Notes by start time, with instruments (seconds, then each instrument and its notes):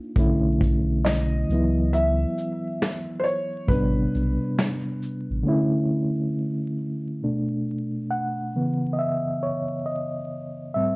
Already playing: reed electric piano A#3 D4 D#4 F4
0.16 sub bass B1, reed electric piano D3 A3 C#4 E4, kick, closed hi-hat
0.61 kick, closed hi-hat, shaker
1.05 felt piano D#5, snare, closed hi-hat
1.49 sub bass C#2, reed electric piano E3 F#3 B3, shaker
1.54 reed electric piano E4
1.93 felt piano E5, closed hi-hat
2.38 closed hi-hat, shaker
2.82 snare, closed hi-hat
3.20 felt piano C5
3.24 felt piano C#5, shaker
3.67 sub bass A1, reed electric piano C3 G3 B3, felt piano B4, kick, closed hi-hat
3.73 reed electric piano D4
4.14 sub bass B1, closed hi-hat, shaker
4.58 snare, closed hi-hat
5.03 shaker
5.30 sub bass A1
5.43 reed electric piano D3 A3 C#4
5.49 reed electric piano E4
7.23 reed electric piano B2 A3 D4
8.11 reed electric piano F#5
8.55 reed electric piano C#3 E3 B3
8.93 reed electric piano D#5
8.99 reed electric piano E5
9.43 reed electric piano C#5
9.86 reed electric piano D#5
10.74 reed electric piano A2 G3 C4 E5